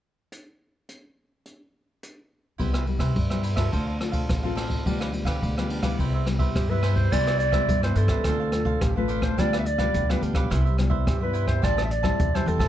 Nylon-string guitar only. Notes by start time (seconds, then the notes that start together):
2.60 C3 G3 B3 E4
2.87 G3 B3 E4
3.16 G2
3.31 G3 B3 E4
3.57 C4 F4 A4
3.74 D3
4.00 C4 F4 A4
4.30 A2
4.45 C4 F4 A4
4.86 D3 G3 B3 F4
5.13 G3 B3 F4
5.43 D3
5.58 G3 B3 F4
5.83 G3 B3 E4
5.99 C3
6.27 G3 B3 E4
6.55 G2
6.70 G3 B3 E4
7.12 C3 G3 B3 E4
7.53 G3 B3 E4
7.70 G2
7.84 G3 B3 E4
8.27 D3 A3 C4 F4
8.53 A3 C4 F4
8.83 A2
8.97 A3 C4 F4
9.39 D3 G3 B3 F4
9.80 G3 B3 F4
9.96 D3
10.10 G3 B3 F4
10.52 C3 G3 B3 E4
10.79 G3 B3 E4
11.08 G2
11.24 G3 B3 E4
11.65 A2 G3 C4 E4
12.04 G3 C4 E4
12.20 E3
12.35 G3 C4 E4